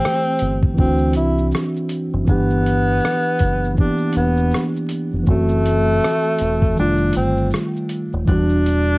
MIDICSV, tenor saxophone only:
0, 0, Header, 1, 2, 480
1, 0, Start_track
1, 0, Tempo, 750000
1, 1458, Time_signature, 4, 2, 24, 8
1, 5747, End_track
2, 0, Start_track
2, 0, Title_t, "Tenor saxophone"
2, 0, Program_c, 0, 66
2, 0, Note_on_c, 0, 60, 114
2, 477, Note_off_c, 0, 60, 0
2, 508, Note_on_c, 0, 60, 97
2, 720, Note_off_c, 0, 60, 0
2, 747, Note_on_c, 0, 64, 82
2, 959, Note_off_c, 0, 64, 0
2, 1469, Note_on_c, 0, 59, 116
2, 2398, Note_off_c, 0, 59, 0
2, 2432, Note_on_c, 0, 62, 87
2, 2642, Note_off_c, 0, 62, 0
2, 2671, Note_on_c, 0, 59, 93
2, 3024, Note_off_c, 0, 59, 0
2, 3394, Note_on_c, 0, 57, 126
2, 4320, Note_off_c, 0, 57, 0
2, 4349, Note_on_c, 0, 62, 90
2, 4560, Note_off_c, 0, 62, 0
2, 4588, Note_on_c, 0, 60, 85
2, 4800, Note_off_c, 0, 60, 0
2, 5302, Note_on_c, 0, 62, 123
2, 5747, Note_off_c, 0, 62, 0
2, 5747, End_track
0, 0, End_of_file